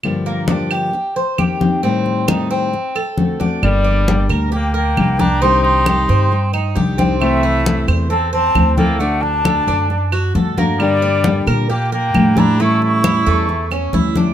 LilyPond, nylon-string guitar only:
\new Staff \with { instrumentName = "Nylon-string guitar" } { \time 4/4 \key g \minor \tempo 4 = 134 <g, d f bes d' g'>4 <g, d f bes d' g'>4 r4 <ees bes c' g'>8 <ees bes c' g'>8 | <a, ees g c'>4 <a, ees g c'>4 r4 <d a c' fis'>8 <a c' fis'>8 | <d g bes d' g'>4 <d g bes d' g'>4 r4 <g bes d' g'>8 <g bes d' g'>8 | <c ees g d' g'>4 <c ees g g'>4 r4 <ees g d' g'>8 <ees g d' g'>8 |
<c e a c' e'>4 <c e a c' e'>4 r4 <e a c' e'>8 <e a c' e'>8 | <d a d' fis'>4 <d a d' fis'>4 r4 <d a d' fis'>8 <a d' fis'>8 | <d g bes d' g'>4 <d g bes d' g'>4 r4 <g bes d' g'>8 <g bes d' g'>8 | <e g cis' e'>4 <e g cis' e'>4 r4 <e g cis' e'>8 <g cis' e'>8 | }